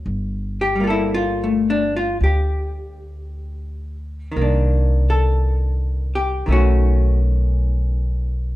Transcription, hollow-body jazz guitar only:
0, 0, Header, 1, 2, 480
1, 0, Start_track
1, 0, Key_signature, -2, "minor"
1, 0, Tempo, 1067616
1, 25, Time_signature, 4, 2, 24, 8
1, 3848, End_track
2, 0, Start_track
2, 0, Title_t, "Hollow-body jazz guitar"
2, 0, Program_c, 0, 26
2, 275, Note_on_c, 0, 67, 66
2, 339, Note_on_c, 0, 55, 41
2, 360, Note_on_c, 0, 58, 43
2, 376, Note_on_c, 0, 65, 45
2, 388, Note_off_c, 0, 67, 0
2, 392, Note_on_c, 0, 69, 49
2, 403, Note_off_c, 0, 65, 0
2, 405, Note_on_c, 0, 64, 63
2, 494, Note_off_c, 0, 64, 0
2, 514, Note_on_c, 0, 65, 70
2, 645, Note_on_c, 0, 57, 44
2, 668, Note_off_c, 0, 65, 0
2, 764, Note_on_c, 0, 62, 66
2, 814, Note_off_c, 0, 57, 0
2, 874, Note_off_c, 0, 62, 0
2, 883, Note_on_c, 0, 65, 63
2, 974, Note_off_c, 0, 65, 0
2, 1005, Note_on_c, 0, 67, 56
2, 1782, Note_off_c, 0, 67, 0
2, 1938, Note_off_c, 0, 55, 0
2, 1940, Note_on_c, 0, 51, 41
2, 1958, Note_off_c, 0, 58, 0
2, 1963, Note_on_c, 0, 58, 44
2, 1974, Note_off_c, 0, 69, 0
2, 1985, Note_on_c, 0, 62, 43
2, 2293, Note_on_c, 0, 69, 57
2, 2744, Note_off_c, 0, 69, 0
2, 2767, Note_on_c, 0, 67, 68
2, 2900, Note_off_c, 0, 51, 0
2, 2905, Note_on_c, 0, 51, 36
2, 2914, Note_off_c, 0, 67, 0
2, 2915, Note_off_c, 0, 58, 0
2, 2917, Note_on_c, 0, 57, 36
2, 2923, Note_off_c, 0, 62, 0
2, 2925, Note_on_c, 0, 61, 43
2, 2933, Note_on_c, 0, 66, 55
2, 3233, Note_off_c, 0, 66, 0
2, 3848, Note_off_c, 0, 51, 0
2, 3848, Note_off_c, 0, 57, 0
2, 3848, Note_off_c, 0, 61, 0
2, 3848, End_track
0, 0, End_of_file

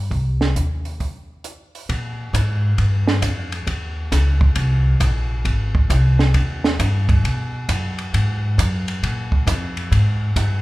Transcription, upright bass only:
0, 0, Header, 1, 2, 480
1, 0, Start_track
1, 0, Tempo, 445434
1, 122, Time_signature, 4, 2, 24, 8
1, 11441, End_track
2, 0, Start_track
2, 0, Title_t, "Upright bass"
2, 0, Program_c, 0, 32
2, 115, Note_on_c, 0, 36, 72
2, 564, Note_off_c, 0, 36, 0
2, 600, Note_on_c, 0, 39, 69
2, 1046, Note_off_c, 0, 39, 0
2, 2038, Note_on_c, 0, 46, 72
2, 2504, Note_off_c, 0, 46, 0
2, 2513, Note_on_c, 0, 44, 84
2, 2981, Note_off_c, 0, 44, 0
2, 2998, Note_on_c, 0, 43, 80
2, 3460, Note_off_c, 0, 43, 0
2, 3467, Note_on_c, 0, 41, 88
2, 3938, Note_off_c, 0, 41, 0
2, 3952, Note_on_c, 0, 39, 68
2, 4420, Note_off_c, 0, 39, 0
2, 4437, Note_on_c, 0, 37, 80
2, 4903, Note_off_c, 0, 37, 0
2, 4913, Note_on_c, 0, 36, 85
2, 5381, Note_off_c, 0, 36, 0
2, 5389, Note_on_c, 0, 34, 93
2, 5858, Note_off_c, 0, 34, 0
2, 5870, Note_on_c, 0, 32, 80
2, 6339, Note_off_c, 0, 32, 0
2, 6352, Note_on_c, 0, 36, 84
2, 6820, Note_off_c, 0, 36, 0
2, 6831, Note_on_c, 0, 39, 88
2, 7300, Note_off_c, 0, 39, 0
2, 7323, Note_on_c, 0, 43, 91
2, 7786, Note_off_c, 0, 43, 0
2, 7797, Note_on_c, 0, 47, 66
2, 8263, Note_off_c, 0, 47, 0
2, 8284, Note_on_c, 0, 42, 82
2, 8747, Note_off_c, 0, 42, 0
2, 8769, Note_on_c, 0, 44, 73
2, 9230, Note_off_c, 0, 44, 0
2, 9245, Note_on_c, 0, 42, 81
2, 9708, Note_off_c, 0, 42, 0
2, 9729, Note_on_c, 0, 46, 67
2, 10190, Note_off_c, 0, 46, 0
2, 10200, Note_on_c, 0, 41, 88
2, 10666, Note_off_c, 0, 41, 0
2, 10683, Note_on_c, 0, 44, 82
2, 11148, Note_off_c, 0, 44, 0
2, 11164, Note_on_c, 0, 43, 86
2, 11441, Note_off_c, 0, 43, 0
2, 11441, End_track
0, 0, End_of_file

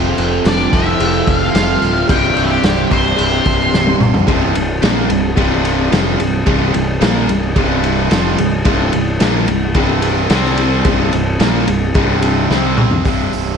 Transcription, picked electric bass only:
0, 0, Header, 1, 2, 480
1, 0, Start_track
1, 0, Tempo, 547445
1, 1836, Time_signature, 4, 2, 24, 8
1, 11899, End_track
2, 0, Start_track
2, 0, Title_t, "Picked electric bass"
2, 0, Program_c, 0, 34
2, 0, Note_on_c, 0, 29, 92
2, 105, Note_off_c, 0, 29, 0
2, 159, Note_on_c, 0, 29, 86
2, 342, Note_off_c, 0, 29, 0
2, 394, Note_on_c, 0, 29, 85
2, 579, Note_off_c, 0, 29, 0
2, 639, Note_on_c, 0, 29, 93
2, 822, Note_off_c, 0, 29, 0
2, 875, Note_on_c, 0, 29, 96
2, 1059, Note_off_c, 0, 29, 0
2, 1119, Note_on_c, 0, 29, 90
2, 1301, Note_off_c, 0, 29, 0
2, 1353, Note_on_c, 0, 29, 94
2, 1537, Note_off_c, 0, 29, 0
2, 1600, Note_on_c, 0, 26, 94
2, 1781, Note_off_c, 0, 26, 0
2, 1836, Note_on_c, 0, 24, 96
2, 2018, Note_off_c, 0, 24, 0
2, 2074, Note_on_c, 0, 24, 84
2, 2257, Note_off_c, 0, 24, 0
2, 2311, Note_on_c, 0, 24, 83
2, 2494, Note_off_c, 0, 24, 0
2, 2555, Note_on_c, 0, 24, 95
2, 2737, Note_off_c, 0, 24, 0
2, 2796, Note_on_c, 0, 24, 93
2, 2977, Note_off_c, 0, 24, 0
2, 3034, Note_on_c, 0, 24, 90
2, 3216, Note_off_c, 0, 24, 0
2, 3269, Note_on_c, 0, 24, 93
2, 3453, Note_off_c, 0, 24, 0
2, 3507, Note_on_c, 0, 24, 90
2, 3691, Note_off_c, 0, 24, 0
2, 3753, Note_on_c, 0, 24, 83
2, 3974, Note_off_c, 0, 24, 0
2, 3991, Note_on_c, 0, 24, 75
2, 4213, Note_off_c, 0, 24, 0
2, 4229, Note_on_c, 0, 34, 83
2, 4452, Note_off_c, 0, 34, 0
2, 4471, Note_on_c, 0, 24, 89
2, 4693, Note_off_c, 0, 24, 0
2, 4709, Note_on_c, 0, 24, 89
2, 5155, Note_off_c, 0, 24, 0
2, 5192, Note_on_c, 0, 29, 104
2, 5413, Note_off_c, 0, 29, 0
2, 5430, Note_on_c, 0, 24, 82
2, 5652, Note_off_c, 0, 24, 0
2, 5672, Note_on_c, 0, 24, 89
2, 5893, Note_off_c, 0, 24, 0
2, 5910, Note_on_c, 0, 24, 74
2, 6132, Note_off_c, 0, 24, 0
2, 6151, Note_on_c, 0, 34, 89
2, 6373, Note_off_c, 0, 34, 0
2, 6396, Note_on_c, 0, 24, 82
2, 6615, Note_off_c, 0, 24, 0
2, 6633, Note_on_c, 0, 24, 98
2, 7077, Note_off_c, 0, 24, 0
2, 7113, Note_on_c, 0, 29, 106
2, 7334, Note_off_c, 0, 29, 0
2, 7350, Note_on_c, 0, 24, 84
2, 7573, Note_off_c, 0, 24, 0
2, 7590, Note_on_c, 0, 24, 86
2, 7813, Note_off_c, 0, 24, 0
2, 7835, Note_on_c, 0, 24, 80
2, 8056, Note_off_c, 0, 24, 0
2, 8076, Note_on_c, 0, 34, 89
2, 8297, Note_off_c, 0, 34, 0
2, 8318, Note_on_c, 0, 24, 84
2, 8538, Note_off_c, 0, 24, 0
2, 8549, Note_on_c, 0, 24, 99
2, 8997, Note_off_c, 0, 24, 0
2, 9031, Note_on_c, 0, 36, 93
2, 9479, Note_off_c, 0, 36, 0
2, 9516, Note_on_c, 0, 24, 89
2, 9739, Note_off_c, 0, 24, 0
2, 9756, Note_on_c, 0, 24, 80
2, 9979, Note_off_c, 0, 24, 0
2, 9999, Note_on_c, 0, 34, 86
2, 10222, Note_off_c, 0, 34, 0
2, 10234, Note_on_c, 0, 24, 85
2, 10459, Note_off_c, 0, 24, 0
2, 10483, Note_on_c, 0, 24, 89
2, 10929, Note_off_c, 0, 24, 0
2, 10965, Note_on_c, 0, 36, 91
2, 11412, Note_off_c, 0, 36, 0
2, 11449, Note_on_c, 0, 24, 85
2, 11645, Note_off_c, 0, 24, 0
2, 11695, Note_on_c, 0, 24, 76
2, 11889, Note_off_c, 0, 24, 0
2, 11899, End_track
0, 0, End_of_file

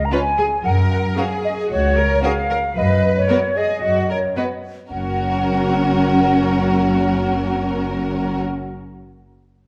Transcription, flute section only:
0, 0, Header, 1, 2, 480
1, 0, Start_track
1, 0, Key_signature, 6, "major"
1, 0, Tempo, 530973
1, 579, Time_signature, 4, 2, 24, 8
1, 8747, End_track
2, 0, Start_track
2, 0, Title_t, "Flute section"
2, 0, Program_c, 0, 73
2, 36, Note_on_c, 0, 82, 42
2, 101, Note_off_c, 0, 82, 0
2, 101, Note_on_c, 0, 80, 62
2, 578, Note_on_c, 0, 78, 58
2, 579, Note_off_c, 0, 80, 0
2, 633, Note_off_c, 0, 78, 0
2, 820, Note_on_c, 0, 78, 62
2, 875, Note_off_c, 0, 78, 0
2, 1057, Note_on_c, 0, 77, 58
2, 1111, Note_off_c, 0, 77, 0
2, 1298, Note_on_c, 0, 75, 67
2, 1352, Note_off_c, 0, 75, 0
2, 1540, Note_on_c, 0, 73, 69
2, 2010, Note_off_c, 0, 73, 0
2, 2021, Note_on_c, 0, 77, 61
2, 2490, Note_off_c, 0, 77, 0
2, 2502, Note_on_c, 0, 75, 58
2, 2860, Note_off_c, 0, 75, 0
2, 2862, Note_on_c, 0, 73, 61
2, 3213, Note_off_c, 0, 73, 0
2, 3221, Note_on_c, 0, 75, 59
2, 3704, Note_off_c, 0, 75, 0
2, 3705, Note_on_c, 0, 73, 51
2, 3947, Note_off_c, 0, 73, 0
2, 3949, Note_on_c, 0, 75, 37
2, 4003, Note_off_c, 0, 75, 0
2, 4436, Note_on_c, 0, 78, 39
2, 7595, Note_off_c, 0, 78, 0
2, 8747, End_track
0, 0, End_of_file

